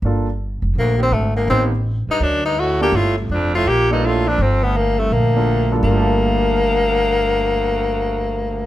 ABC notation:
X:1
M:4/4
L:1/16
Q:"Swing" 1/4=166
K:Gm
V:1 name="Grand piano"
[B,DFA]2 z12 z2 | [=B,CEG]2 z12 [_B,DFA]2 | z8 z2 [B,DFA]6 | z8 z2 [B,DFA]4 [G,,B,DFA]2 |
[G,B,FA]16- | [G,B,FA]16 |]
V:2 name="Tenor saxophone"
z8 B,2 C2 A,2 B,2 | C2 z4 E2 D2 E2 ^F2 G2 | F2 A,2 D2 F2 G2 E2 F2 D2 | C2 =B,2 _B,2 A,2 B,6- B, z |
B,16- | B,16 |]
V:3 name="Baritone saxophone" clef=bass
z8 D,,2 E,,2 D,,2 D,,2 | E,,2 z4 G,,2 ^F,,2 G,,2 A,,2 B,,2 | A,,2 C,,2 F,,2 A,,2 B,,2 G,,2 A,,2 F,,2 | F,,2 D,,2 D,,2 C,,2 D,,6- D,, z |
D,,16- | D,,16 |]
V:4 name="Upright bass" clef=bass
G,,,6 F,,,2 B,,,4 _A,,,4 | A,,,6 z2 D,,8 | G,,,4 F,,,4 B,,,8 | G,,,8 B,,,8 |
G,,,16- | G,,,16 |]